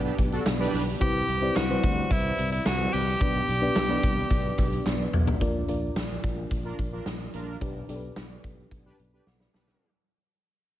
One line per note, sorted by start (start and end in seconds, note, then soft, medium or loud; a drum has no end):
0.00 0.11 B1 loud
0.00 1.02 B2 medium
0.00 1.03 B3 medium
0.00 1.02 D4 medium
0.00 1.01 G4 medium
0.00 1.01 B4 medium
0.00 1.03 D5 loud
0.05 0.16 B3 medium
0.05 0.16 D4 medium
0.05 0.16 G4 loud
0.19 0.38 B1 loud
0.19 kick medium
0.19 closed hi-hat medium
0.32 0.43 D4 medium
0.32 0.43 F#4 loud
0.32 0.43 A4 loud
0.32 closed hi-hat medium
0.46 0.66 B1 loud
0.46 snare loud
0.46 clap medium
0.46 closed hi-hat medium
0.46 tambourine medium
0.60 0.82 D4 loud
0.60 0.82 G4 medium
0.60 0.82 B4 loud
0.74 0.93 B1 loud
0.74 open hi-hat medium
1.00 1.21 C2 loud
1.00 1.79 C3 medium
1.00 1.35 C4 medium
1.00 1.36 E4 medium
1.00 1.36 G4 medium
1.00 1.58 G4 loud
1.00 1.36 B4 medium
1.00 1.36 C5 medium
1.00 kick loud
1.00 closed hi-hat medium
1.28 1.48 C2 medium
1.28 closed hi-hat medium
1.42 1.65 C4 medium
1.42 1.65 E4 medium
1.42 1.65 G4 medium
1.42 1.65 B4 medium
1.42 1.66 D5 medium
1.56 1.76 C2 medium
1.56 2.13 F#4 loud
1.56 snare loud
1.56 clap medium
1.56 closed hi-hat medium
1.56 tambourine medium
1.69 2.63 G3 medium
1.69 2.62 C4 medium
1.69 2.62 E4 medium
1.69 2.63 B4 medium
1.69 2.63 C5 medium
1.84 2.03 D2 medium
1.84 kick loud
1.84 closed hi-hat medium
2.11 2.31 C2 loud
2.11 2.52 E4 loud
2.11 kick loud
2.11 closed hi-hat medium
2.38 2.59 C2 loud
2.38 closed hi-hat medium
2.52 2.67 E4 medium
2.52 closed hi-hat medium
2.66 2.86 C2 loud
2.66 2.95 F#4 loud
2.66 snare loud
2.66 clap medium
2.66 closed hi-hat medium
2.66 tambourine medium
2.93 3.14 C2 loud
2.93 4.86 G4 loud
2.93 open hi-hat medium
3.21 3.41 B1 loud
3.21 4.00 B2 medium
3.21 3.56 B3 medium
3.21 3.56 D4 medium
3.21 3.56 G4 medium
3.21 3.56 B4 medium
3.21 3.56 D5 medium
3.21 kick loud
3.21 closed hi-hat loud
3.48 3.69 B1 medium
3.48 closed hi-hat medium
3.62 3.85 B3 medium
3.62 3.85 D4 medium
3.62 3.86 G4 medium
3.62 3.86 B4 medium
3.62 3.86 D5 loud
3.76 3.96 B1 loud
3.76 snare loud
3.76 clap medium
3.76 closed hi-hat medium
3.76 tambourine medium
3.89 4.82 B3 medium
3.89 4.82 D4 medium
3.89 4.82 G4 medium
3.89 4.83 B4 medium
3.89 4.83 D5 loud
4.03 4.23 C2 loud
4.03 kick loud
4.03 closed hi-hat medium
4.31 4.51 B1 loud
4.31 kick loud
4.31 closed hi-hat medium
4.58 4.78 B1 loud
4.58 kick medium
4.58 clap medium
4.58 closed hi-hat medium
4.72 closed hi-hat medium
4.86 5.06 B1 loud
4.86 snare medium
4.86 clap medium
5.13 5.34 B1 medium
5.13 mid tom loud
5.27 floor tom medium
5.40 5.61 A#1 medium
5.40 6.20 A#2 medium
5.40 5.64 D4 medium
5.40 5.64 F4 medium
5.40 5.65 A#4 medium
5.40 5.65 D5 medium
5.40 kick loud
5.40 closed hi-hat medium
5.68 5.89 A#1 medium
5.68 6.61 D4 medium
5.68 6.61 F4 medium
5.68 6.61 A#4 medium
5.68 6.62 D5 medium
5.68 closed hi-hat medium
5.96 6.16 A#1 medium
5.96 snare loud
5.96 closed hi-hat medium
6.24 6.44 A#1 medium
6.24 kick medium
6.24 closed hi-hat medium
6.51 6.71 A#1 medium
6.51 kick medium
6.51 closed hi-hat medium
6.65 6.77 D4 medium
6.65 6.77 F4 medium
6.65 6.77 A#4 loud
6.79 6.99 A#1 medium
6.79 kick medium
6.79 closed hi-hat medium
6.92 7.04 D4 medium
6.92 7.04 F4 medium
6.92 7.04 A#4 medium
7.06 7.26 A#1 medium
7.06 snare medium
7.06 closed hi-hat medium
7.34 7.54 A#1 medium
7.34 7.57 D4 medium
7.34 7.57 F4 medium
7.34 7.57 A#4 medium
7.34 closed hi-hat medium
7.61 7.81 B1 medium
7.61 8.40 B2 medium
7.61 7.84 D4 medium
7.61 7.85 G4 medium
7.61 7.85 B4 medium
7.61 7.85 D5 medium
7.61 kick loud
7.61 closed hi-hat medium
7.89 8.09 B1 medium
7.89 8.81 D4 medium
7.89 8.82 G4 medium
7.89 7.96 A4 medium
7.89 8.82 D5 medium
7.89 closed hi-hat medium
7.96 8.85 B4 medium
8.16 8.36 B1 medium
8.16 snare loud
8.16 closed hi-hat medium
8.44 8.64 B1 medium
8.44 kick medium
8.44 closed hi-hat medium
8.71 8.91 B1 loud
8.71 kick medium
8.71 closed hi-hat medium
8.85 8.97 D4 medium
8.85 8.97 G4 medium
8.85 8.97 B4 loud
8.99 9.19 B1 medium
8.99 closed hi-hat medium
9.13 9.25 D4 medium
9.13 9.25 G4 medium
9.13 9.25 B4 medium
9.27 9.46 B1 medium
9.27 9.40 F#5 soft
9.27 9.40 D6 medium
9.27 snare soft
9.40 9.54 D5 soft
9.40 9.53 B5 medium
9.40 snare medium
9.54 9.74 B1 medium
9.54 9.89 D4 medium
9.54 9.89 G4 medium
9.54 9.89 B4 loud
9.54 9.67 A5 medium
9.54 snare medium
9.68 9.94 B4 soft
9.68 9.94 G5 medium
9.68 snare medium